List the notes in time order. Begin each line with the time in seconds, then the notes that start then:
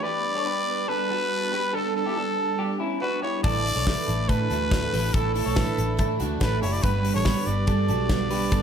0.03 G3 B3 D4 G4 B4 D5
0.35 A4 C#5
0.46 G4 B4
0.88 D4 A4 B4
1.10 F#4 A4
1.52 G4 B4
1.73 D4 A4
1.96 A4
2.06 E4 G4
2.16 D4 A4
2.59 D4 G4
2.80 C#4 E4
3.01 D4 F#4 B4
3.22 E4 G4 C#5
3.44 A1 A2 D3 E3 A3 D4 E4 A4 D5, kick, open hi-hat
3.65 E3 A3 D4 A4, hi-hat pedal, open hi-hat
3.76 B1 A4 C#5
3.86 A2 D3 E3 A3 D4 E4 A4 B4, kick, snare
4.06 A1 E3 A3 D4 A4, hi-hat pedal, open hi-hat
4.27 A2 E3 A3 D4 E4 A4 B4, kick, hi-hat pedal, open hi-hat
4.49 D2 E3 A3 D4 F#4 A4, hi-hat pedal, open hi-hat
4.71 A2 D3 E3 A3 D4 A4, kick, snare, hi-hat pedal, open hi-hat
4.91 A1 E3 A3 D4 G4 A4 B4, hi-hat pedal, open hi-hat
5.13 A1 A2 D3 E3 A3 D4 E4 A4, kick, hi-hat pedal, open hi-hat
5.34 E3 A3 D4 A4, hi-hat pedal, open hi-hat
5.46 B1 A4 C#5
5.56 A2 D3 E3 A3 D4 E4 A4 B4, kick, snare, hi-hat pedal, open hi-hat
5.77 A1 E3 A3 D4 A4, hi-hat pedal, open hi-hat
5.97 A2 E3 A3 D4 E4 A4, kick, hi-hat pedal, open hi-hat
6.19 D2 E3 A3 D4 F#4 A4, hi-hat pedal, open hi-hat
6.40 A1 A2 D3 E3 A3 D4 E4 A4 B4, kick, snare, hi-hat pedal, open hi-hat
6.62 F#1 E3 A3 D4 E4 G4 A4 C#5, hi-hat pedal, open hi-hat
6.72 D5
6.83 G1 G2 D3 G3 B3 D4 G4 B4, kick, hi-hat pedal, open hi-hat
7.03 G3 B3 D4 G4, hi-hat pedal, open hi-hat
7.14 A1 A4 C#5
7.25 G2 D3 G3 B3 D4 G4 B4, kick, snare, hi-hat pedal, open hi-hat
7.46 G1 G3 B3 D4 G4 D5, hi-hat pedal, open hi-hat
7.67 G2 G3 B3 D4 G4 A4, kick, hi-hat pedal, open hi-hat
7.88 B1 G3 B3 D4 F#4 G4 A4, hi-hat pedal, open hi-hat
8.09 G2 D3 G3 B3 D4 G4, kick, snare, hi-hat pedal, open hi-hat
8.30 G3 B3 D4 G4 B4, hi-hat pedal, open hi-hat
8.52 G1 G2 D3 G3 B3 D4 G4 A4, kick, hi-hat pedal, open hi-hat